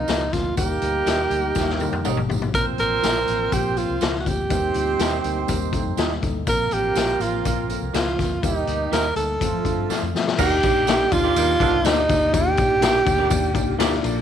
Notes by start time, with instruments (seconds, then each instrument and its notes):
Already playing: horn section A#3 C4 F4 A#4, tenor saxophone D#4
0.08 fingered electric bass C#2, tine electric piano F3 A#3 C4 G4, clean electric guitar F4 A#4 C5 F5, snare, closed hi-hat, tambourine
0.32 fingered electric bass D2, tine electric piano F3 A#3 C4 A#4, tenor saxophone F4, kick, snare, closed hi-hat, tambourine
0.56 fingered electric bass D#2, tine electric piano G3 A#3 D#4 A#4, horn section A#3 D#4 G4 A#4, tenor saxophone G4, kick, closed hi-hat, tambourine
0.81 fingered electric bass D2, tine electric piano G3 A#3 D#4 A#4, closed hi-hat, tambourine
1.06 fingered electric bass D#2, tine electric piano G3 A#3 D#4 A#4, clean electric guitar D#4 G4 A#4 D#5, snare, closed hi-hat, tambourine
1.30 fingered electric bass D2, tine electric piano G3 A#3 D#4 A#4, closed hi-hat, tambourine
1.55 fingered electric bass D#2, tine electric piano G3 A#3 D#4 G4, kick, snare, tambourine
1.69 snare
1.78 tine electric piano G3 A#3 D#4 A#4, high tom, tambourine
1.92 fingered electric bass F2, high tom
2.03 fingered electric bass G#1, tine electric piano G3 A#3 D#4 G4, clean electric guitar D#4 G4 A#4 D#5, mid tom, tambourine
2.17 mid tom
2.27 fingered electric bass A1, tine electric piano G3 A#3 D#4 G4, floor tom
2.31 tambourine
2.42 floor tom
2.52 fingered electric bass A#1, tine electric piano F3 A#3 C4 A#4, horn section C4 F4 C5, tenor saxophone A#4, kick, closed hi-hat, tambourine
2.77 fingered electric bass A1, tine electric piano F3 A#3 C4 A#4, tenor saxophone A#4, closed hi-hat, tambourine
3.02 fingered electric bass A#1, tine electric piano F3 A#3 C4, clean electric guitar F4 A#4 C5 F5, snare, closed hi-hat, tambourine
3.26 fingered electric bass A1, tine electric piano F3 A#3 C4 A#4, closed hi-hat, tambourine
3.51 fingered electric bass A#1, tine electric piano F3 A#3 C4 A#4, tenor saxophone G4, kick, closed hi-hat, tambourine
3.75 tine electric piano F3 A#3 C4 A#4, tenor saxophone F4, closed hi-hat, tambourine
3.90 fingered electric bass C2
4.00 fingered electric bass C#2, tine electric piano F3 A#3 C4 A#4, clean electric guitar F4 A#4 C5 F5, snare, closed hi-hat, tambourine
4.15 snare
4.20 tenor saxophone F#4
4.24 fingered electric bass D2, tine electric piano F3 A#3 C4 F4, tenor saxophone G4, kick, closed hi-hat, tambourine
4.49 fingered electric bass D#2, tine electric piano G3 A#3 D#4 A#4, horn section C4 D#4 G4 C5, kick, closed hi-hat, tambourine
4.74 fingered electric bass D2, tine electric piano G3 A#3 D#4 F4, closed hi-hat, tambourine
4.98 fingered electric bass D#2, tine electric piano G3 A#3 D#4 A#4, clean electric guitar D#4 G4 A#4 D#5, snare, closed hi-hat, tambourine
5.23 fingered electric bass D2, tine electric piano G3 A#3 D#4 A#4, closed hi-hat, tambourine
5.47 fingered electric bass D#2, tine electric piano G3 A#3 D#4 A#4, kick, closed hi-hat, tambourine
5.71 tine electric piano G3 A#3 D#4 A4 A#5, kick, closed hi-hat, tambourine
5.86 fingered electric bass F2
5.96 fingered electric bass D#2, tine electric piano G3 A#3 D#4 F4 G5, clean electric guitar D#4 G4 A#4 D#5, snare, closed hi-hat, tambourine
6.11 snare
6.21 fingered electric bass D2, tine electric piano G3 A#3 D#4 A4 D#5, kick, closed hi-hat, tambourine
6.46 fingered electric bass A#1, tine electric piano F3 A#3 C4 A#4, horn section A#3 C4 F4 A#4, tenor saxophone A#4, kick, closed hi-hat, tambourine
6.70 fingered electric bass A1, tine electric piano F3 A#3 C4, tenor saxophone G4, closed hi-hat, tambourine
6.94 fingered electric bass A#1, tine electric piano F3 A#3 C4 A#4, clean electric guitar F4 A#4 C5 F5, snare, closed hi-hat, tambourine
7.19 fingered electric bass A1, tine electric piano F3 A#3 C4 A#4, tenor saxophone F4, closed hi-hat, tambourine
7.43 fingered electric bass A#1, tine electric piano F3 A#3 C4 A#4, kick, closed hi-hat, tambourine
7.68 tine electric piano F3 A#3 C4 A4, closed hi-hat, tambourine
7.82 fingered electric bass C2
7.93 fingered electric bass C#2, tine electric piano F3 A#3 C4 A#4, clean electric guitar F4 A#4 C5 F5, tenor saxophone F4, snare, closed hi-hat, tambourine
8.07 snare
8.16 fingered electric bass D2, tine electric piano F3 A#3 C4 A#4, kick, snare, closed hi-hat
8.20 tambourine
8.41 fingered electric bass D#2, tine electric piano G3 A#3 D#4 A#4, horn section G3 A#3 D#4 G4, tenor saxophone D#4, kick, closed hi-hat, tambourine
8.66 fingered electric bass D2, tine electric piano G3 A#3 D#4 A#4, closed hi-hat, tambourine
8.91 fingered electric bass D#2, tine electric piano G3 A#3 D#4 A#4, clean electric guitar D#4 G4 A#4 D#5, tenor saxophone A#4, snare, closed hi-hat, tambourine
9.16 fingered electric bass D2, tine electric piano G3 A#3 D#4 A#4, tenor saxophone A4, closed hi-hat, tambourine
9.40 fingered electric bass F2, tine electric piano F3 A3 C4 A4, horn section F3 A3 C4 F4, kick, closed hi-hat, tambourine
9.53 fingered electric bass F3
9.64 fingered electric bass F2, tine electric piano F3 A3 C4 D4, kick, closed hi-hat, tambourine
9.77 fingered electric bass G2
9.89 tine electric piano F3 A3 C4 A4, clean electric guitar F4 A4 C5 F5, muted fingered electric bass stroke, snare, tambourine
10.02 fingered electric bass F2
10.14 fingered electric bass F3, tine electric piano F3 A3 C4 A4, snare, tambourine
10.28 snare
10.38 fingered electric bass D#2, tine electric piano A#3 D4 D#4 G4 D5, horn section A#3 D#4 G4 A#4, tonewheel organ D#4 G4 D5, tenor saxophone G4, kick, crash, tambourine
10.63 fingered electric bass A#1, horn section G3 D#4 G4, tine electric piano A#3 D4 D#4 G4 D5, kick, ride, tambourine
10.87 tine electric piano A#3 D4 D#4 G4 A4, clean electric guitar D4 G4 A#4 D5, snare, ride, tambourine
11.11 fingered electric bass D2, horn section F3 A#3 D4 F4, tine electric piano A#3 D4 D#4 G4 D5, tenor saxophone F4, kick, ride, tambourine
11.24 clean electric guitar D4 G4 A#4 D5
11.35 fingered electric bass D#2, horn section D#3 G3 A#3 D#4, tine electric piano A#3 D4 D#4 G4 D5, ride, tambourine
11.60 fingered electric bass C2, horn section D3 G3 A#3 D4, tine electric piano A#3 D4 D#4 G4 C5, kick, ride, tambourine
11.84 fingered electric bass D2, tine electric piano A#3 D4 D#4 G4 C5, clean electric guitar D4 G4 A#4 D5, tenor saxophone D#4, snare, ride, tambourine
12.08 fingered electric bass D2, tine electric piano A#3 D4 D#4 G4 D5, kick, snare, ride, tambourine
12.32 fingered electric bass D#2, tine electric piano A#3 D4 D#4 G4 D5, tonewheel organ F4, tenor saxophone G4, kick, ride, tambourine
12.55 fingered electric bass A#1, tine electric piano A#3 D4 D#4 G4 D5, kick, ride, tambourine
12.81 tine electric piano A#3 D4 D#4 G4 A#4, clean electric guitar D4 G4 A#4 D5, snare, ride, tambourine
13.05 fingered electric bass D2, tine electric piano A#3 D4 D#4 G4 D5, kick, ride, tambourine
13.19 clean electric guitar D4 G4 A#4 D5
13.29 fingered electric bass D#2, tine electric piano A#3 D4 D#4 G4 D5, kick, ride, tambourine
13.54 fingered electric bass C2, tine electric piano A#3 D4 D#4 G4 D5 G5, kick, ride, tambourine
13.78 fingered electric bass D2, tine electric piano A#3 D4 D#4 G4 D5, clean electric guitar D4 G4 A#4 D5, snare, ride, tambourine
13.93 snare
14.02 fingered electric bass A#1, tine electric piano A#3 D4 F4 A4 D5, tonewheel organ A#3 A4, ride, tambourine